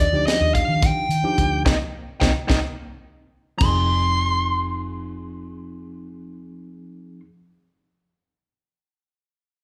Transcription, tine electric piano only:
0.12 F3 D4 D#4 G4
1.24 F3 D4 D#4 G4
1.65 A#3 C4 D#4
2.21 A#3 C4 D#4
2.49 A#3 C4 D#4
3.58 F3 C4 D#4
3.63 G#4

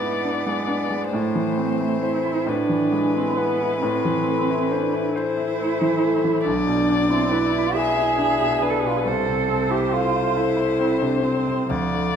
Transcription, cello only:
Already playing: B3
1.13 A3
2.04 E4
2.49 D4
3.16 C4
3.37 B3
3.81 C4
4.71 D4
5.15 E4
6.45 D4
7.11 C4
7.32 E4
7.74 G#4
8.70 A4
8.80 G#4
8.88 F4
8.97 G#4
9.06 A4
9.71 G4
9.93 F4
10.37 E4
11.02 D4
11.24 C4
11.70 F3

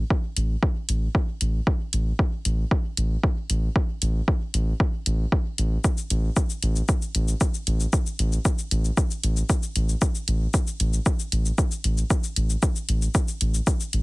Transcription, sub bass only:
0.36 A1
0.89 A1
1.41 A1
1.93 A1
2.45 A1
2.97 A1
3.50 A1
4.02 A1
4.54 A1
5.06 A1
5.58 A1
6.10 A1
6.63 A1
7.15 A1
7.67 A1
8.19 A1
8.71 A1
9.23 A1
9.76 A1
10.28 A1
10.80 A1
11.32 A1
11.84 A1
12.37 A1
12.89 A1
13.41 A1
13.93 A1

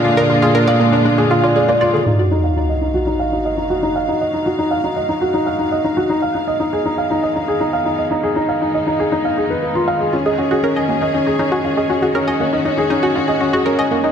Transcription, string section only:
Already playing: D3 G#3 A#3 F4
2.06 D#3 F#3 A#3
4.08 G#3
6.09 D#3 G#3 B3
8.11 D#4
10.13 C#4 G#4
12.15 F#4

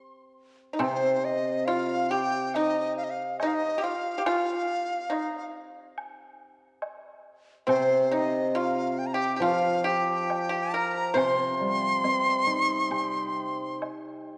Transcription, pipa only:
0.73 D#4
0.79 C4
1.68 F4
2.11 G4
2.56 D#4
3.43 D#4
3.78 G4
3.84 F4
4.18 G4
4.26 F4
5.10 D#4
7.67 C4
8.12 D#4
8.55 F4
9.14 G4
9.36 G4
9.42 F4
9.84 G4
10.49 G4
10.74 A#4
11.14 C5

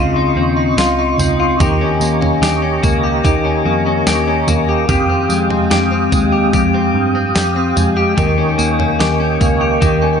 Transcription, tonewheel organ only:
Already playing: F4 D#5 C6 C#6
1.61 G4 A#5
4.88 G4 F5 G5 D#6
8.18 A#4 D#5 C#6

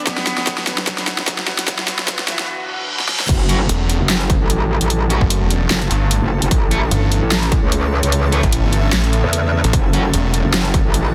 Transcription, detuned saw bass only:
3.69 E1
5.21 F#1
5.41 E1
5.91 G1
6.91 G1
8.43 A1
8.64 G1
8.93 A1
9.64 A1
10.14 E1

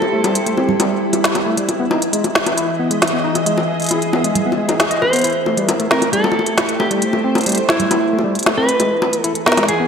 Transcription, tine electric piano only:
0.13 A3
0.24 G3
0.46 A3
0.58 C4
0.80 G3
1.24 E4
1.46 A3
1.58 G3
1.80 B3
1.91 D#4
2.13 G#3
2.57 E4
2.80 B3
2.91 G#3
3.13 B3
3.24 D#4
3.46 G#3
3.91 E4
4.13 B3
4.24 G#3
4.46 B3
4.57 G#3
4.68 D#4
4.80 G#4
4.91 D#5
5.02 B4
5.13 B3
5.24 E4
5.46 A3
5.57 G3
5.80 A3
5.91 C4
6.13 G3
6.57 E4
6.80 A3
6.91 G3
7.13 A3
7.24 C4
7.46 G3
7.91 E4
8.13 A3
8.24 G3
8.46 A3
8.58 C4
8.80 G#3
9.24 E4
9.46 B3
9.58 G#3
9.80 B3

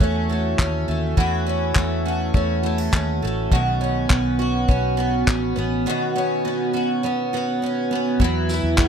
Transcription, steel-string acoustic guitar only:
Already playing: E3 C#4 F#4
0.01 A3
0.30 F#4
0.59 C#4
0.89 A3
1.18 E3
1.48 A3
1.76 F#4
2.06 C#4
2.35 A3
2.64 E4
2.78 F#4
2.92 C#4
3.22 A3
3.52 D#3
3.81 B3
4.10 F#4
4.40 C#4
4.69 B3
4.99 F#4
5.27 C#4
5.57 B3
5.86 D#3
6.16 B3
6.45 F#4
6.73 C#4
7.04 B3
7.33 F#4
7.62 C#4
7.91 B3
8.20 F#3
8.49 E4
8.78 G#4

